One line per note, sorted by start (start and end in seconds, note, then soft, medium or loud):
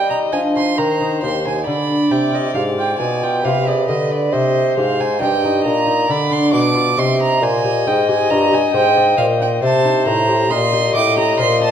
0.00 0.28 G3 soft
0.00 0.31 G3 soft
0.00 0.23 G4 soft
0.00 0.78 D#5 medium
0.10 0.46 D#4 soft
0.10 0.18 A#5 medium
0.32 0.76 F3 medium
0.32 0.73 F3 soft
0.32 0.55 D4 soft
0.32 0.40 G#5 medium
0.56 0.78 D#4 soft
0.56 0.79 C6 medium
0.76 1.21 D#3 medium
0.76 1.18 D#3 soft
0.76 1.65 C5 medium
0.76 1.22 A#5 medium
1.01 1.36 D#4 soft
1.22 1.65 D#2 medium
1.22 1.63 D#2 soft
1.22 1.58 G4 soft
1.22 1.44 C6 medium
1.46 1.67 D#4 soft
1.46 1.66 G#5 medium
1.65 1.98 D3 medium
1.65 2.07 D3 soft
1.65 3.40 D5 medium
1.65 2.13 B5 medium
2.11 2.54 C3 medium
2.11 2.51 C3 soft
2.11 2.46 G4 soft
2.11 2.36 G5 medium
2.32 2.68 F4 soft
2.32 2.54 D#5 medium
2.54 2.95 G#2 soft
2.54 2.98 G#2 medium
2.54 2.90 G4 soft
2.54 2.62 F5 medium
2.78 3.13 F4 soft
2.78 2.98 G5 medium
2.99 3.43 B2 soft
2.99 3.40 B2 soft
2.99 3.22 D#4 soft
2.99 3.25 G#5 medium
3.23 3.58 F4 soft
3.23 3.46 G5 medium
3.43 3.89 C3 medium
3.43 3.85 C3 soft
3.43 3.80 G4 soft
3.43 4.34 B4 medium
3.43 3.69 F5 medium
3.67 3.89 G#4 soft
3.67 3.88 D5 medium
3.88 4.32 D3 medium
3.88 4.29 D3 soft
3.88 4.24 G4 soft
3.88 4.13 D#5 medium
4.12 4.33 D5 medium
4.32 4.75 C3 medium
4.32 4.73 C3 soft
4.32 5.22 C5 medium
4.32 4.76 D#5 medium
4.77 5.22 G#2 medium
4.77 5.17 G#2 medium
4.77 5.12 G4 soft
4.77 5.02 F5 medium
5.00 5.35 D#4 soft
5.00 5.21 G#5 medium
5.20 5.67 G2 medium
5.20 5.61 G2 medium
5.20 5.56 G4 soft
5.20 6.09 D#5 medium
5.20 5.64 G5 medium
5.45 5.79 D#4 soft
5.65 6.08 A#2 medium
5.65 6.05 A#2 soft
5.65 5.87 D4 soft
5.65 6.12 A#5 medium
5.87 6.09 D#4 soft
6.09 6.55 D3 medium
6.09 6.49 D3 soft
6.09 6.99 D5 medium
6.09 6.34 B5 medium
6.31 6.66 D4 soft
6.31 6.53 C6 medium
6.53 6.93 B2 soft
6.53 6.97 B2 medium
6.53 6.88 B4 soft
6.53 7.00 D6 medium
6.74 6.97 F4 soft
6.98 7.38 C3 soft
6.98 7.41 C3 medium
6.98 9.63 D#5 medium
6.98 7.20 C6 medium
7.19 7.55 D#4 soft
7.19 7.44 A#5 medium
7.41 7.85 A#2 medium
7.41 7.82 A#2 soft
7.41 7.77 C5 soft
7.41 7.89 G#5 medium
7.65 8.00 G4 medium
7.87 8.27 G#2 soft
7.87 8.30 G#2 medium
7.87 8.22 D#5 medium
7.87 8.09 G5 medium
8.09 8.44 G4 soft
8.09 8.31 G#5 medium
8.30 8.61 G2 medium
8.30 8.71 G2 soft
8.30 8.53 F4 soft
8.30 8.55 A#5 medium
8.53 8.88 G4 soft
8.53 8.73 G#5 medium
8.73 9.14 G#2 medium
8.73 9.18 G#2 medium
8.73 9.10 C5 medium
8.73 9.17 G5 medium
8.97 9.19 D5 soft
9.17 9.59 A#2 medium
9.17 9.62 A#2 medium
9.17 9.54 C5 soft
9.17 9.25 F5 medium
9.40 9.63 D#4 soft
9.40 9.50 G5 medium
9.62 10.03 C3 medium
9.62 10.09 C3 medium
9.62 10.50 C5 medium
9.62 10.07 A5 medium
9.85 10.21 D#4 soft
10.06 10.47 A2 medium
10.06 10.52 A2 medium
10.06 10.42 C5 soft
10.06 10.52 A#5 medium
10.29 10.65 G4 soft
10.50 10.92 A#2 medium
10.50 10.99 A#2 medium
10.50 10.72 D#5 soft
10.50 11.71 D#5 medium
10.50 10.95 C6 loud
10.72 11.09 G4 soft
10.94 11.36 A2 medium
10.94 11.40 A2 medium
10.94 11.18 F4 soft
10.94 11.18 D6 medium
11.17 11.53 G4 soft
11.17 11.39 A#5 medium
11.39 11.71 A#2 medium
11.39 11.71 C5 soft
11.39 11.62 C6 medium
11.61 11.71 D5 soft
11.61 11.71 A5 medium